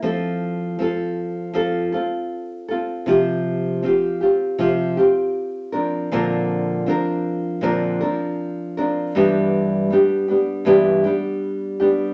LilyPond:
\new Staff \with { instrumentName = "Nylon-string guitar" } { \time 4/4 \key c \mixolydian \tempo 4 = 79 <f c' f' a'>4 <f c' f' a'>4 <f c' f' a'>8 <c' f' a'>4 <c' f' a'>8 | <c f c' f' g'>4 <f c' f' g'>8 <c' f' g'>8 <c f c' f' g'>8 <c' f' g'>4 <f c' d' bes'>8 | <bes, d f c' d' bes'>4 <f c' d' bes'>4 <bes, d f c' d' bes'>8 <f c' d' bes'>4 <f c' d' bes'>8 | <g, e g b d' g'>4 <g b d' g'>8 <g b d' g'>8 <g, e g b d' g'>8 <g b d' g'>4 <g b d' g'>8 | }